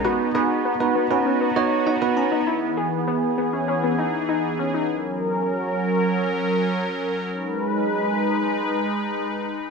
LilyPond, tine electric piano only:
\new Staff \with { instrumentName = "Tine electric piano" } { \time 4/4 \key gis \minor \tempo 4 = 99 << { r2 r8 dis''8 fis''8 ais''8 | r1 | r1 | r1 | } \\ { <b dis' fis' b'>8 <b dis' fis' b'>8. <b dis' fis' b'>8 <b dis' fis' b'>8. <b dis' fis' cis''>8. <b dis' fis' b'>8. | r1 | r1 | r1 | } >> }